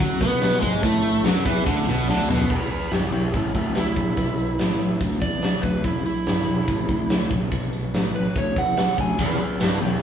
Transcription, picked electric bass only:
0.01 0.20 F#2 medium
0.21 0.60 B2 medium
0.63 0.82 G#2 medium
0.83 1.22 A2 medium
1.24 1.44 F#2 medium
1.46 1.65 E2 medium
1.66 1.86 D2 medium
1.87 2.07 B1 medium
2.09 2.28 D2 medium
2.30 2.49 B1 medium
2.50 2.70 E1 medium
2.71 muted picked electric bass stroke soft
2.91 3.11 G1 medium
3.12 3.32 E1 medium
3.35 3.54 A1 medium
3.55 3.94 D2 medium
3.97 4.16 A#1 medium
4.17 4.56 B1 medium
4.59 4.98 A1 medium
5.00 5.20 D2 medium
5.22 5.41 E2 medium
5.44 muted picked electric bass stroke soft
5.63 5.83 D2 medium
5.84 6.04 E1 medium
6.06 muted picked electric bass stroke soft
6.28 6.47 G1 medium
6.48 6.67 E1 medium
6.68 6.88 A1 medium
6.89 7.28 D2 medium
7.31 7.50 A#1 medium
7.52 7.91 B1 medium
7.94 8.33 A1 medium
8.36 8.55 D2 medium
8.56 8.76 E2 medium
8.78 muted picked electric bass stroke soft
8.98 9.18 D2 medium
9.19 9.39 E1 medium
9.42 muted picked electric bass stroke soft
9.62 9.81 G1 medium
9.84 10.01 E1 medium

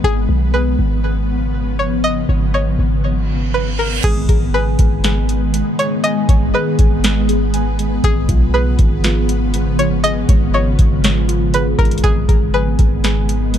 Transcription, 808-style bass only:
0.04 0.28 G#1 loud
0.29 0.77 B1 loud
0.79 2.25 G#1 loud
2.29 2.77 G#1 loud
2.79 4.00 G#1 loud
4.04 4.28 G#1 loud
4.29 4.77 G#1 loud
4.79 5.63 G#1 loud
6.29 6.53 G#1 loud
6.79 8.00 G#1 loud
8.04 8.28 G#1 loud
8.29 8.77 B1 loud
8.79 10.25 G#1 loud
10.29 10.77 G#1 loud
10.79 11.75 G#1 loud
11.79 12.03 G#1 loud
12.04 12.28 G#1 loud
12.29 12.77 G#1 loud
12.79 13.58 G#1 loud

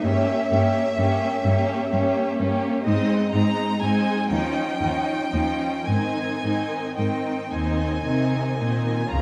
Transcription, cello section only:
0.04 0.12 G2 soft
0.51 0.59 G2 soft
0.98 1.06 G2 soft
1.44 1.52 G2 soft
1.92 2.00 G2 soft
2.39 2.47 G2 soft
2.86 2.94 G#2 soft
3.34 3.42 G#2 soft
3.82 3.90 G#2 soft
4.31 4.39 D#2 soft
4.82 4.90 D#2 soft
5.34 5.42 D#2 soft
5.88 5.96 G#2 soft
6.44 6.52 G#2 soft
6.98 7.06 G#2 soft
7.51 8.01 D#2 soft
8.05 8.60 C3 soft
8.60 9.11 A#2 soft
9.12 9.22 C#3 soft

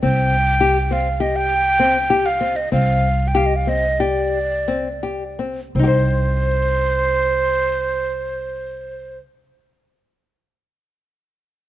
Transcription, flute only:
0.03 0.94 G5 medium
0.93 1.23 F5 medium
1.21 1.38 D#5 medium
1.36 2.27 G5 loud
2.26 2.58 F5 medium
2.56 2.72 D#5 medium
2.73 3.29 F5 medium
3.28 3.38 G5 medium
3.37 3.48 F5 medium
3.46 3.58 D#5 medium
3.56 3.70 F5 medium
3.69 4.02 D#5 medium
4.00 5.39 D5 medium
5.76 9.19 C5 medium

